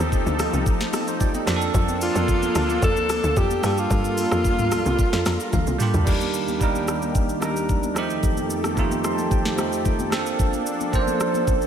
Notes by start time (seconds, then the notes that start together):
Already playing: F3 A3 C4 D#4 G4 A4
0.00 D#2, high conga
0.12 kick, shaker
0.26 D2, high conga, shaker
0.39 cross-stick, open hi-hat, high conga, low conga, shaker
0.53 C2, high conga, shaker
0.66 kick, shaker
0.80 snare, shaker
0.93 C4 A4 A5, cross-stick, open hi-hat, high conga, shaker
1.08 D#4 C5, shaker
1.20 F4 D5 G5, kick, low conga, shaker
1.34 G4 D#5, high conga, shaker
1.46 F2 F3 A#3 C4 D4 G4 A4 F5, cross-stick, snare, open hi-hat, shaker
1.56 A4
1.61 shaker
1.74 F2, kick, low conga, shaker
1.88 high conga, shaker
2.01 F4, open hi-hat, shaker
2.15 F2, high conga, shaker
2.28 kick, shaker
2.42 high conga, shaker
2.55 D2, cross-stick, open hi-hat, high conga, low conga, shaker
2.69 high conga, shaker
2.82 F2 A4, kick, shaker
2.96 D2, shaker
3.09 cross-stick, open hi-hat, high conga, shaker
3.24 D2, shaker
3.36 F2 G4, kick, low conga, shaker
3.50 high conga, shaker
3.62 G2 G3 A#3 D4 F4 A4, cross-stick, open hi-hat, shaker
3.78 F4, shaker
3.91 G2, kick, low conga, shaker
4.04 high conga, shaker
4.18 open hi-hat, shaker
4.32 F2, cross-stick, high conga, shaker
4.45 kick, shaker
4.59 D2, mid tom, high conga, shaker
4.72 cross-stick, open hi-hat, high conga, low conga, shaker
4.86 C2, high conga, shaker
4.99 kick, shaker
5.13 F2, snare, shaker
5.25 F2 A#5, cross-stick, snare, open hi-hat, high conga, shaker
5.40 shaker
5.52 D2 F5, kick, high tom, low conga, shaker
5.67 C2, high conga, shaker
5.78 G3 A#3 D4 F4 G4, mid tom, open hi-hat, shaker
5.94 D2, floor tom, shaker
6.05 D#2 D#3 G3 A#3 D4 D#4 G4, kick, crash, low conga, shaker
6.09 A#4
6.21 high conga, shaker
6.34 shaker
6.48 high conga, shaker
6.59 G3 A#3 D4 D#4 A#4, kick, shaker
6.75 high conga, shaker
6.88 cross-stick, high conga, shaker
7.02 high conga, shaker
7.15 kick, shaker
7.29 shaker
7.40 G3 A#3 D4 D#4 A#4, cross-stick, high conga, shaker
7.56 shaker
7.69 kick, low conga, shaker
7.83 high conga, shaker
7.94 F2 D#3 F3 A3 C4 D#4 G4 A4, cross-stick, shaker
8.10 shaker
8.23 kick, low conga, shaker
8.37 high conga, shaker
8.50 shaker
8.64 cross-stick, high conga, shaker
8.75 F3 A3 C4 D#4 F4, kick, shaker
8.91 high conga, shaker
9.04 C6, cross-stick, high conga, shaker
9.13 A5
9.18 high conga, shaker
9.31 G5, kick, shaker
9.45 snare, shaker
9.56 F3 A3 C4 D#4 G4, cross-stick, high conga, shaker
9.73 shaker
9.85 G5, kick, low conga, shaker
9.99 high conga, shaker
10.10 F3 A#3 C4 D4, cross-stick, snare, shaker
10.14 A4
10.21 F5
10.26 shaker
10.39 kick, low conga, shaker
10.53 high conga, shaker
10.66 shaker
10.81 high conga, shaker
10.91 F3 A#3 C4 C#4, kick, shaker
10.95 C5
11.01 D4
11.07 high conga, shaker
11.20 cross-stick, high conga, shaker
11.34 high conga, shaker
11.47 kick, shaker
11.62 shaker